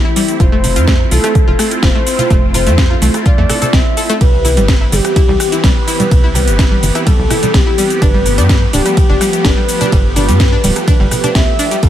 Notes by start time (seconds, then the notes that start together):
Already playing: A3 C4 E4 G4
0.05 E4
0.16 G3, open hi-hat, shaker
0.29 closed hi-hat, shaker
0.40 F1 A3 F4 C5, kick, closed hi-hat, shaker
0.52 A3
0.64 open hi-hat, high conga, low conga, high woodblock, shaker
0.76 F2 F4, closed hi-hat, shaker
0.87 A3, kick, snare, closed hi-hat, shaker
1.00 high woodblock
1.11 C2 F4 A4, open hi-hat, high conga, shaker
1.24 A3, cross-stick, closed hi-hat, shaker
1.35 kick, closed hi-hat, high conga, low conga, shaker
1.48 F1 F4
1.59 A3, cross-stick, open hi-hat, shaker
1.71 closed hi-hat, shaker
1.83 F1 F4 C5, kick, snare, closed hi-hat, shaker
1.95 A3
2.07 open hi-hat, shaker
2.19 F4, closed hi-hat, low conga, shaker
2.30 F1 A3, kick, closed hi-hat, shaker
2.54 F4 C5, open hi-hat, high conga, low conga, high woodblock, shaker
2.67 F2 A3, closed hi-hat, shaker
2.78 kick, snare, closed hi-hat, shaker
2.90 F4, high woodblock
3.01 C2 A3, open hi-hat, high conga, shaker
3.14 cross-stick, closed hi-hat, high woodblock, shaker
3.26 F4 D5, kick, closed hi-hat, high conga, shaker
3.38 F2 A3
3.49 A4, cross-stick, open hi-hat, low conga, shaker
3.62 A4, closed hi-hat, low conga, shaker
3.73 C2 C4 E5, kick, snare, closed hi-hat, shaker
3.97 A4, open hi-hat, shaker
4.09 A3, closed hi-hat, shaker
4.21 C2 E3 G3 B3 G4 B4, kick, closed hi-hat, ride, shaker
4.45 E4, open hi-hat, high conga, low conga, high woodblock, shaker
4.57 G1 G3, closed hi-hat, shaker
4.68 kick, snare, closed hi-hat, ride, shaker
4.81 E4, high woodblock
4.92 G1 G3 G4, open hi-hat, high conga, shaker
5.05 cross-stick, closed hi-hat, shaker
5.16 E4, kick, closed hi-hat, ride, high conga, low conga, shaker
5.28 C2 G3
5.40 cross-stick, open hi-hat, shaker
5.52 E4, closed hi-hat, shaker
5.64 C2 G3 B4, kick, snare, closed hi-hat, ride, shaker
5.88 E4, open hi-hat, shaker
6.00 G3, closed hi-hat, low conga, shaker
6.11 C2, kick, closed hi-hat, ride, shaker
6.24 E4
6.34 G3 B4, open hi-hat, high conga, low conga, high woodblock, shaker
6.47 G1, closed hi-hat, shaker
6.59 E4, kick, snare, closed hi-hat, ride, shaker
6.71 G3, high woodblock
6.83 G1, open hi-hat, high conga, shaker
6.95 E4, cross-stick, closed hi-hat, high woodblock, shaker
7.07 G3 A4, kick, closed hi-hat, ride, high conga, shaker
7.19 C2
7.30 E4, cross-stick, open hi-hat, low conga, shaker
7.43 G3, closed hi-hat, low conga, shaker
7.54 C2 G4, kick, snare, closed hi-hat, ride, shaker
7.67 E4
7.78 G3, open hi-hat, shaker
7.90 closed hi-hat, shaker
8.02 G1 F3 A3 D4 B4, kick, closed hi-hat, ride, shaker
8.14 G3
8.26 open hi-hat, high conga, low conga, high woodblock, shaker
8.38 G2 D4, closed hi-hat, shaker
8.49 G3, kick, snare, closed hi-hat, ride, shaker
8.61 high woodblock
8.73 D1 D4 G4, open hi-hat, high conga, shaker
8.86 G3, cross-stick, closed hi-hat, shaker
8.97 kick, closed hi-hat, ride, high conga, low conga, shaker
9.09 G1 D4
9.21 G3, cross-stick, open hi-hat, shaker
9.33 closed hi-hat, shaker
9.45 G1 D4 B4, kick, snare, closed hi-hat, ride, shaker
9.57 G3
9.69 open hi-hat, shaker
9.81 D4, closed hi-hat, low conga, shaker
9.92 G1 G3, kick, closed hi-hat, ride, shaker
10.16 D4 B4, open hi-hat, high conga, low conga, high woodblock, shaker
10.28 G2 G3, closed hi-hat, shaker
10.40 kick, snare, closed hi-hat, ride, shaker
10.52 D4, high woodblock
10.64 D1 G3, open hi-hat, high conga, shaker
10.76 cross-stick, closed hi-hat, high woodblock, shaker
10.88 D4 B4, kick, closed hi-hat, ride, high conga, shaker
11.00 G1 G3
11.11 cross-stick, open hi-hat, low conga, shaker
11.24 D4, closed hi-hat, low conga, shaker
11.35 D2 G3 E5, kick, snare, closed hi-hat, ride, shaker
11.59 D4, open hi-hat, shaker
11.71 G3, closed hi-hat, shaker
11.83 A1 G3 C4 E4 A4, kick, closed hi-hat, ride, shaker